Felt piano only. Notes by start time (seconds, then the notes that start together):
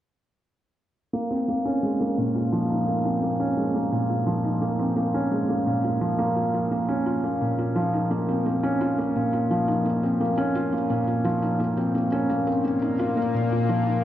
1.13 A#3
1.31 C4
1.48 A#3
1.65 C#4
1.83 G#3
2.00 A#3
2.18 A#2
2.35 F4
2.52 F3
2.70 D#4
2.87 A#3
3.05 C4
3.22 A#3
3.40 C#4
3.57 G#3
3.74 A#3
3.92 A#2
4.09 F4
4.27 F3
4.44 D#4
4.62 A#3
4.79 C4
4.96 A#3
5.14 C#4
5.32 G#3
5.49 A#3
5.67 A#2
5.84 F4
6.01 F3
6.19 A#3
6.36 F4
6.54 F4
6.71 A#3
6.89 C#4
7.06 F4
7.24 A#3
7.41 A#2
7.58 F4
7.75 F3
7.93 D#4
8.11 A#3
8.29 C4
8.46 A#3
8.63 C#4
8.81 F4
8.98 A#3
9.16 A#2
9.33 F4
9.51 F3
9.68 D#4
9.85 A#3
10.03 C4
10.20 A#3
10.38 C#4
10.55 F4
10.72 A#3
10.90 A#2
11.07 F4
11.24 F3
11.42 D#4
11.60 A#3
11.77 C4
11.95 A#3
12.12 C#4
12.29 A#3
12.47 C4
12.64 A#3
12.82 D#4
12.99 F4
13.17 A#3
13.34 A#2
13.52 F4
13.69 F3
13.87 D#4